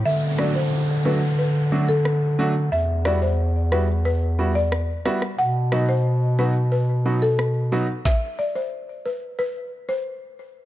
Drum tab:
SD |--r---------r---|--r---r-----r-rr|--r---------r---|o---------------|
BD |----------------|----------------|----------------|o---------------|